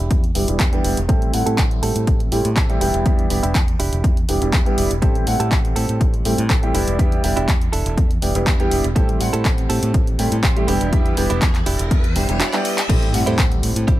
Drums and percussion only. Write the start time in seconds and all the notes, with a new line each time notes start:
0.11 kick, closed hi-hat
0.24 closed hi-hat
0.35 open hi-hat
0.48 closed hi-hat
0.60 kick, clap, closed hi-hat
0.73 closed hi-hat
0.84 open hi-hat
0.97 closed hi-hat
1.09 kick, closed hi-hat
1.22 closed hi-hat
1.34 open hi-hat
1.47 closed hi-hat
1.58 kick, clap, closed hi-hat
1.71 closed hi-hat
1.83 open hi-hat
1.96 closed hi-hat
2.07 kick, closed hi-hat
2.20 closed hi-hat
2.32 open hi-hat
2.45 closed hi-hat
2.57 kick, clap, closed hi-hat
2.70 closed hi-hat
2.81 open hi-hat
2.94 closed hi-hat
3.06 kick, closed hi-hat
3.19 closed hi-hat
3.30 open hi-hat
3.43 closed hi-hat
3.55 kick, clap, closed hi-hat
3.68 closed hi-hat
3.80 open hi-hat
3.93 closed hi-hat
4.04 kick, closed hi-hat
4.17 closed hi-hat
4.29 open hi-hat
4.42 closed hi-hat
4.53 kick, clap, closed hi-hat
4.66 closed hi-hat
4.78 open hi-hat
4.91 closed hi-hat
5.02 kick, closed hi-hat
5.15 closed hi-hat
5.27 open hi-hat
5.40 closed hi-hat
5.52 kick, clap, closed hi-hat
5.65 closed hi-hat
5.76 open hi-hat
5.89 closed hi-hat
6.01 kick, closed hi-hat
6.14 closed hi-hat
6.25 open hi-hat
6.38 closed hi-hat
6.50 kick, clap, closed hi-hat
6.63 closed hi-hat
6.75 open hi-hat
6.88 closed hi-hat
6.99 kick, closed hi-hat
7.12 closed hi-hat
7.24 open hi-hat
7.37 closed hi-hat
7.48 kick, clap, closed hi-hat
7.62 closed hi-hat
7.73 open hi-hat
7.86 closed hi-hat
7.98 kick, closed hi-hat
8.11 closed hi-hat
8.22 open hi-hat
8.35 closed hi-hat
8.47 kick, clap, closed hi-hat
8.60 closed hi-hat
8.71 open hi-hat
8.84 closed hi-hat
8.96 kick, closed hi-hat
9.09 closed hi-hat
9.21 open hi-hat
9.34 closed hi-hat
9.45 kick, clap, closed hi-hat
9.58 closed hi-hat
9.70 open hi-hat
9.83 closed hi-hat
9.94 kick, closed hi-hat
10.07 closed hi-hat
10.19 open hi-hat
10.32 closed hi-hat
10.43 kick, clap, closed hi-hat
10.57 closed hi-hat
10.68 open hi-hat
10.81 closed hi-hat
10.93 kick, closed hi-hat
11.06 closed hi-hat
11.17 open hi-hat
11.30 closed hi-hat
11.42 kick, clap, closed hi-hat
11.55 clap, closed hi-hat
11.66 open hi-hat
11.79 closed hi-hat
11.91 kick, closed hi-hat
12.04 closed hi-hat
12.16 open hi-hat
12.29 closed hi-hat
12.40 clap, closed hi-hat
12.53 clap, closed hi-hat
12.65 open hi-hat
12.78 clap, closed hi-hat
12.89 kick, closed hi-hat, crash
13.03 closed hi-hat
13.14 open hi-hat
13.27 closed hi-hat
13.39 kick, clap, closed hi-hat
13.52 closed hi-hat
13.63 open hi-hat
13.76 closed hi-hat
13.88 kick, closed hi-hat